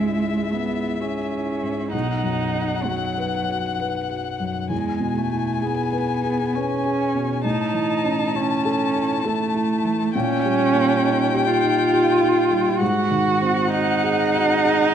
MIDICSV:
0, 0, Header, 1, 4, 480
1, 0, Start_track
1, 0, Key_signature, 4, "minor"
1, 0, Tempo, 934579
1, 992, Time_signature, 3, 2, 24, 8
1, 1947, Tempo, 918836
1, 3387, Tempo, 894188
1, 6747, Tempo, 917431
1, 7865, End_track
2, 0, Start_track
2, 0, Title_t, "Violin"
2, 0, Program_c, 0, 40
2, 0, Note_on_c, 0, 76, 42
2, 970, Note_off_c, 0, 76, 0
2, 994, Note_on_c, 0, 78, 47
2, 2406, Note_off_c, 0, 78, 0
2, 2427, Note_on_c, 0, 80, 50
2, 3850, Note_off_c, 0, 80, 0
2, 3868, Note_on_c, 0, 81, 58
2, 5295, Note_off_c, 0, 81, 0
2, 5318, Note_on_c, 0, 79, 67
2, 6726, Note_off_c, 0, 79, 0
2, 6744, Note_on_c, 0, 78, 68
2, 7865, Note_off_c, 0, 78, 0
2, 7865, End_track
3, 0, Start_track
3, 0, Title_t, "Grand piano"
3, 0, Program_c, 1, 0
3, 0, Control_c, 1, 64, 127
3, 0, Note_on_c, 1, 37, 43
3, 0, Note_on_c, 1, 44, 32
3, 0, Note_on_c, 1, 61, 32
3, 30, Note_on_c, 1, 64, 33
3, 127, Note_off_c, 1, 61, 0
3, 193, Note_on_c, 1, 68, 36
3, 291, Note_off_c, 1, 64, 0
3, 452, Note_off_c, 1, 68, 0
3, 519, Note_on_c, 1, 68, 35
3, 679, Note_on_c, 1, 64, 32
3, 773, Note_off_c, 1, 68, 0
3, 835, Note_off_c, 1, 44, 0
3, 835, Note_on_c, 1, 44, 30
3, 931, Note_off_c, 1, 64, 0
3, 972, Note_off_c, 1, 37, 0
3, 989, Note_on_c, 1, 35, 42
3, 993, Note_off_c, 1, 44, 0
3, 1002, Control_c, 1, 64, 0
3, 1071, Control_c, 1, 64, 127
3, 1146, Note_on_c, 1, 42, 35
3, 1307, Note_on_c, 1, 63, 35
3, 1402, Note_off_c, 1, 42, 0
3, 1465, Note_on_c, 1, 66, 36
3, 1563, Note_off_c, 1, 63, 0
3, 1632, Note_on_c, 1, 71, 40
3, 1723, Note_off_c, 1, 66, 0
3, 1793, Note_on_c, 1, 66, 36
3, 1885, Note_off_c, 1, 71, 0
3, 1951, Note_on_c, 1, 71, 37
3, 2045, Note_off_c, 1, 66, 0
3, 2107, Note_on_c, 1, 66, 34
3, 2205, Note_off_c, 1, 71, 0
3, 2266, Note_on_c, 1, 42, 36
3, 2362, Note_off_c, 1, 66, 0
3, 2403, Note_off_c, 1, 35, 0
3, 2420, Note_on_c, 1, 40, 47
3, 2426, Note_off_c, 1, 42, 0
3, 2436, Control_c, 1, 64, 0
3, 2512, Control_c, 1, 64, 127
3, 2580, Note_on_c, 1, 47, 39
3, 2744, Note_on_c, 1, 64, 35
3, 2839, Note_off_c, 1, 47, 0
3, 2902, Note_on_c, 1, 68, 42
3, 3001, Note_off_c, 1, 64, 0
3, 3060, Note_on_c, 1, 71, 44
3, 3161, Note_off_c, 1, 68, 0
3, 3225, Note_on_c, 1, 68, 38
3, 3320, Note_off_c, 1, 71, 0
3, 3387, Note_on_c, 1, 71, 40
3, 3484, Note_off_c, 1, 68, 0
3, 3552, Note_on_c, 1, 68, 39
3, 3647, Note_off_c, 1, 71, 0
3, 3711, Note_on_c, 1, 47, 40
3, 3808, Note_off_c, 1, 68, 0
3, 3847, Note_off_c, 1, 40, 0
3, 3870, Note_on_c, 1, 45, 50
3, 3871, Note_off_c, 1, 47, 0
3, 3879, Control_c, 1, 64, 0
3, 3957, Control_c, 1, 64, 127
3, 4027, Note_on_c, 1, 52, 42
3, 4187, Note_on_c, 1, 61, 41
3, 4287, Note_off_c, 1, 52, 0
3, 4349, Note_on_c, 1, 64, 46
3, 4449, Note_off_c, 1, 61, 0
3, 4517, Note_on_c, 1, 69, 51
3, 4611, Note_off_c, 1, 64, 0
3, 4678, Note_on_c, 1, 64, 41
3, 4774, Note_off_c, 1, 69, 0
3, 4841, Note_on_c, 1, 69, 51
3, 4933, Note_off_c, 1, 64, 0
3, 4996, Note_on_c, 1, 64, 44
3, 5095, Note_off_c, 1, 69, 0
3, 5158, Note_on_c, 1, 52, 43
3, 5253, Note_off_c, 1, 64, 0
3, 5296, Note_off_c, 1, 45, 0
3, 5318, Note_off_c, 1, 52, 0
3, 5323, Note_on_c, 1, 46, 63
3, 5326, Control_c, 1, 64, 0
3, 5424, Control_c, 1, 64, 127
3, 5481, Note_on_c, 1, 55, 46
3, 5636, Note_on_c, 1, 58, 48
3, 5733, Note_off_c, 1, 55, 0
3, 5798, Note_on_c, 1, 63, 50
3, 5890, Note_off_c, 1, 58, 0
3, 5959, Note_on_c, 1, 67, 54
3, 6050, Note_off_c, 1, 63, 0
3, 6118, Note_on_c, 1, 63, 47
3, 6210, Note_off_c, 1, 67, 0
3, 6275, Note_on_c, 1, 67, 50
3, 6368, Note_off_c, 1, 63, 0
3, 6430, Note_on_c, 1, 63, 46
3, 6526, Note_off_c, 1, 67, 0
3, 6585, Note_on_c, 1, 55, 45
3, 6684, Note_off_c, 1, 63, 0
3, 6728, Note_off_c, 1, 46, 0
3, 6746, Note_off_c, 1, 55, 0
3, 6746, Note_on_c, 1, 44, 57
3, 6757, Control_c, 1, 64, 0
3, 6852, Control_c, 1, 64, 127
3, 6906, Note_on_c, 1, 51, 48
3, 7066, Note_on_c, 1, 60, 48
3, 7161, Note_off_c, 1, 51, 0
3, 7228, Note_on_c, 1, 66, 47
3, 7323, Note_off_c, 1, 60, 0
3, 7389, Note_on_c, 1, 68, 56
3, 7484, Note_off_c, 1, 66, 0
3, 7549, Note_on_c, 1, 66, 46
3, 7644, Note_off_c, 1, 68, 0
3, 7708, Note_on_c, 1, 68, 51
3, 7804, Note_off_c, 1, 66, 0
3, 7865, Note_off_c, 1, 44, 0
3, 7865, Note_off_c, 1, 68, 0
3, 7865, End_track
4, 0, Start_track
4, 0, Title_t, "Cello"
4, 0, Program_c, 2, 42
4, 0, Note_on_c, 2, 56, 61
4, 275, Note_on_c, 2, 59, 52
4, 283, Note_off_c, 2, 56, 0
4, 517, Note_on_c, 2, 61, 53
4, 524, Note_off_c, 2, 59, 0
4, 986, Note_off_c, 2, 61, 0
4, 989, Note_on_c, 2, 63, 66
4, 1470, Note_on_c, 2, 54, 54
4, 1477, Note_off_c, 2, 63, 0
4, 1947, Note_off_c, 2, 54, 0
4, 2424, Note_on_c, 2, 56, 58
4, 2671, Note_on_c, 2, 57, 57
4, 2679, Note_off_c, 2, 56, 0
4, 2914, Note_on_c, 2, 59, 61
4, 2922, Note_off_c, 2, 57, 0
4, 3388, Note_on_c, 2, 61, 79
4, 3396, Note_off_c, 2, 59, 0
4, 3872, Note_off_c, 2, 61, 0
4, 3875, Note_on_c, 2, 63, 77
4, 4354, Note_on_c, 2, 61, 71
4, 4363, Note_off_c, 2, 63, 0
4, 4842, Note_on_c, 2, 57, 77
4, 4850, Note_off_c, 2, 61, 0
4, 5319, Note_on_c, 2, 61, 90
4, 5327, Note_off_c, 2, 57, 0
4, 6031, Note_on_c, 2, 65, 80
4, 6039, Note_off_c, 2, 61, 0
4, 6742, Note_on_c, 2, 66, 83
4, 6750, Note_off_c, 2, 65, 0
4, 7217, Note_off_c, 2, 66, 0
4, 7220, Note_on_c, 2, 63, 97
4, 7865, Note_off_c, 2, 63, 0
4, 7865, End_track
0, 0, End_of_file